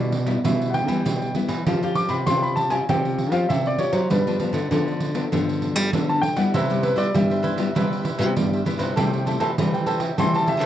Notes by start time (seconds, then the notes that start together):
Already playing: B2 G3 B3 E4 D5
0.00 pandeiro
0.12 pandeiro
0.26 G3 B3 E4, pandeiro
0.44 B2 E3 G3 B3 E4 E5, pandeiro
0.62 pandeiro
0.70 F#5
0.74 G5, pandeiro
0.87 E3 G3 B3 E4, pandeiro
1.05 B2, pandeiro
1.22 pandeiro
1.35 G3 B3 E4, pandeiro
1.48 E3, pandeiro
1.66 F3 C4 F4 G4, pandeiro
1.82 C4 F4 G4, pandeiro
1.95 D6, pandeiro
2.09 C3 B5, pandeiro
2.26 C3 C4 F4 G4 C6, pandeiro
2.42 B5, pandeiro
2.56 A5, pandeiro
2.70 C4 F4 G4 G#5, pandeiro
2.89 C3 F3 C4 F4 G4 G5, pandeiro
3.05 pandeiro
3.18 pandeiro
3.32 F3 C4 F4 G4 F5, pandeiro
3.49 C3 E5, pandeiro
3.66 D5, pandeiro
3.78 C4 F4 G4 C#5, pandeiro
3.92 F#3 C5, pandeiro
4.10 G2 F3 G3 B3 D4 B4, pandeiro
4.27 F3 B3 D4, pandeiro
4.40 F3 B3 D4, pandeiro
4.53 D3, pandeiro
4.71 D3 F3 B3 D4, pandeiro
4.88 pandeiro
5.00 pandeiro
5.14 F3 B3 D4, pandeiro
5.32 G2 D3 F3 B3 D4, pandeiro
5.49 pandeiro
5.62 pandeiro
5.76 G3, pandeiro
5.93 D3 F3 B3 D4, pandeiro
6.09 A5, pandeiro
6.21 G5, pandeiro
6.36 G3 B3 E4 F#5, pandeiro
6.54 C3 E4 B4 C5 E5, pandeiro
6.70 G3 B3 E4 G4, pandeiro
6.82 E4 B4 C5 E5, pandeiro
6.96 G3 E4 B4 C5 D5 E5, pandeiro
7.14 G2 G3 B3 E4 E5, pandeiro
7.30 B4 C5 E5, pandeiro
7.43 E4 B4 C5 E5, pandeiro
7.57 G3 B3 E4 B4 C5 E5, pandeiro
7.75 C3 G3 B3 E4 B4 C5 E5, pandeiro
7.93 pandeiro
8.03 E4 B4 C5 E5, pandeiro
8.18 C3 G3 B3 E4 B4 C5 E5, pandeiro
8.36 G2 G3, pandeiro
8.53 B4 C5 E5, pandeiro
8.65 G3 B3 E4 B4 C5 E5, pandeiro
8.78 C3 B4 C5 E5, pandeiro
8.96 C3 G3 A3 E4 A4 C5 E5 G5, pandeiro
9.13 pandeiro
9.26 G3 A3 E4 A4 C5 E5 G5, pandeiro
9.40 E3 A4 C5 E5 G5, pandeiro
9.58 C3 E3 G3 A3 E4, pandeiro
9.74 C5 E5 G5, pandeiro
9.86 A4 C5 E5 G5, pandeiro
10.00 C5 E5 G5, pandeiro
10.17 C3 E3 G3 A3 E4 A4 C5 E5 G5 C6, pandeiro
10.35 A5, pandeiro
10.46 A4 C5 E5 G5, pandeiro
10.59 C3 A4 B4 C5 E5 G5, pandeiro